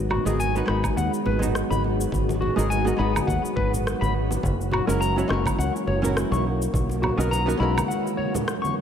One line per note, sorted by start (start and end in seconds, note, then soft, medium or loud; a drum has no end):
0.00 0.17 G#1 loud
0.00 4.39 D#3 medium
0.00 8.81 F#3 medium
0.00 0.22 G#3 medium
0.00 4.39 G#3 medium
0.00 0.22 B3 medium
0.00 4.39 B3 medium
0.00 0.22 D#4 medium
0.00 0.23 F#4 medium
0.00 6.41 F#4 medium
0.00 0.23 A#4 medium
0.10 0.26 F#4 medium
0.10 low conga medium
0.10 low woodblock medium
0.25 0.61 G#1 medium
0.25 0.51 G#3 medium
0.25 0.51 B3 medium
0.25 0.52 D#4 medium
0.25 0.52 F#4 medium
0.25 0.38 G#4 medium
0.25 0.52 A#4 medium
0.25 muted conga medium
0.25 high conga medium
0.25 shaker medium
0.40 0.55 G#5 medium
0.40 shaker medium
0.55 0.64 G#3 medium
0.55 0.65 B3 medium
0.55 0.66 D#4 medium
0.55 0.66 F#4 medium
0.55 0.66 B4 medium
0.55 shaker soft
0.66 0.88 G#1 medium
0.66 1.37 G#3 medium
0.66 1.37 B3 medium
0.66 1.38 D#4 medium
0.66 0.82 B5 medium
0.66 cross-stick medium
0.70 1.39 F#4 medium
0.84 kick loud
0.84 muted conga soft
0.84 high conga medium
0.84 low woodblock medium
0.84 shaker medium
0.97 1.07 D#2 loud
0.97 1.11 F#5 medium
0.97 shaker medium
1.14 shaker soft
1.26 1.62 G#1 medium
1.26 1.41 B4 medium
1.26 muted conga medium
1.26 high conga medium
1.39 2.52 G#3 medium
1.39 2.53 B3 medium
1.39 2.53 D#4 medium
1.39 low conga medium
1.39 shaker medium
1.43 2.54 F#4 medium
1.55 cross-stick medium
1.55 shaker medium
1.70 2.05 G#1 medium
1.70 1.82 B5 medium
1.70 high conga loud
1.70 shaker soft
1.84 muted conga soft
2.01 shaker medium
2.12 2.48 G#1 medium
2.12 kick loud
2.12 high conga medium
2.12 shaker medium
2.29 muted conga medium
2.29 shaker soft
2.41 2.56 F#4 medium
2.41 low conga medium
2.56 2.92 G#1 medium
2.56 2.82 G#3 medium
2.56 2.82 B3 medium
2.56 2.82 D#4 medium
2.56 2.83 F#4 medium
2.56 2.69 G#4 medium
2.56 2.83 A#4 medium
2.56 high conga medium
2.56 shaker medium
2.70 2.85 G#5 medium
2.70 shaker medium
2.85 2.95 G#3 medium
2.85 2.95 B3 medium
2.85 2.96 D#4 medium
2.85 2.96 F#4 medium
2.85 2.97 A#4 loud
2.85 muted conga medium
2.85 shaker soft
2.97 3.19 G#1 medium
2.97 4.40 G#3 medium
2.97 4.41 B3 medium
2.97 4.42 D#4 medium
2.97 4.42 F#4 medium
2.97 3.13 B5 medium
3.16 high conga loud
3.16 low woodblock medium
3.16 shaker medium
3.27 3.38 D#2 loud
3.27 3.42 F#5 medium
3.27 kick medium
3.27 muted conga medium
3.27 shaker soft
3.45 shaker soft
3.56 3.92 G#1 medium
3.56 3.71 B4 medium
3.56 kick loud
3.56 high conga medium
3.73 low conga medium
3.73 shaker medium
3.87 cross-stick medium
3.87 muted conga soft
3.87 shaker medium
4.01 4.36 G#1 medium
4.01 4.13 B5 medium
4.01 high conga medium
4.01 shaker soft
4.31 muted conga medium
4.31 shaker medium
4.43 4.79 F#1 loud
4.43 6.43 E3 medium
4.43 8.81 A#3 medium
4.43 6.43 C#4 medium
4.43 kick loud
4.43 high conga medium
4.43 shaker medium
4.61 shaker soft
4.72 4.87 F#4 medium
4.72 low conga medium
4.72 low woodblock medium
4.87 5.23 F#1 medium
4.87 5.13 G#3 medium
4.87 5.13 C#4 medium
4.87 5.13 E4 medium
4.87 5.14 F#4 medium
4.87 4.99 A#4 medium
4.87 5.14 A#4 medium
4.87 muted conga medium
4.87 high conga medium
4.87 shaker medium
5.01 5.16 A#5 medium
5.01 shaker medium
5.16 5.26 G#3 medium
5.16 5.27 C#4 medium
5.16 5.27 E4 medium
5.16 5.27 F#4 medium
5.16 5.28 C#5 medium
5.16 shaker soft
5.28 5.50 F#1 medium
5.28 5.98 G#3 medium
5.28 5.99 C#4 medium
5.28 6.00 E4 medium
5.28 5.44 C#6 medium
5.28 cross-stick medium
5.28 muted conga medium
5.32 6.00 F#4 medium
5.32 6.01 A#4 loud
5.46 kick loud
5.46 high conga loud
5.46 low woodblock medium
5.46 shaker medium
5.58 5.69 C#2 loud
5.58 5.73 F#5 medium
5.58 shaker medium
5.76 shaker soft
5.87 6.23 F#1 medium
5.87 6.02 C#5 medium
5.87 muted conga medium
5.87 high conga medium
6.02 6.43 G#3 medium
6.02 6.43 C#4 medium
6.02 6.44 E4 medium
6.02 6.44 F#4 medium
6.02 6.44 A#4 medium
6.02 low conga medium
6.02 shaker medium
6.17 cross-stick medium
6.17 shaker medium
6.32 6.66 B1 medium
6.32 6.44 C#6 medium
6.32 muted conga medium
6.32 high conga medium
6.32 shaker soft
6.45 7.88 D#3 medium
6.45 7.88 B3 medium
6.45 8.81 F#4 medium
6.62 shaker medium
6.74 7.10 B1 loud
6.74 kick loud
6.74 high conga medium
6.74 shaker medium
6.89 muted conga medium
6.89 shaker soft
7.02 7.18 F#4 medium
7.02 low conga loud
7.02 low woodblock medium
7.18 7.53 B1 medium
7.18 7.43 B3 medium
7.18 7.44 C#4 medium
7.18 7.44 D#4 medium
7.18 7.44 F#4 medium
7.18 7.30 A#4 medium
7.18 7.45 A#4 medium
7.18 high conga medium
7.18 shaker medium
7.31 7.46 A#5 medium
7.31 muted conga medium
7.31 shaker medium
7.46 7.57 B3 medium
7.46 7.57 C#4 medium
7.46 7.57 D#4 medium
7.46 7.58 F#4 medium
7.46 7.58 A#4 loud
7.46 shaker soft
7.57 7.80 B1 medium
7.57 8.81 G#3 medium
7.57 8.81 C#4 medium
7.57 8.81 E4 medium
7.57 7.74 B5 medium
7.62 8.81 F#4 medium
7.62 8.81 A#4 loud
7.77 high conga loud
7.77 low woodblock medium
7.77 shaker medium
7.88 8.81 E3 medium
7.88 8.81 C#4 medium
7.88 8.03 F#5 medium
7.88 muted conga soft
7.88 shaker medium
8.07 shaker soft
8.17 8.33 C#5 medium
8.17 high conga medium
8.34 muted conga medium
8.34 low conga medium
8.34 shaker medium
8.48 cross-stick medium
8.48 shaker medium
8.62 8.74 C#6 medium
8.62 high conga medium
8.62 shaker soft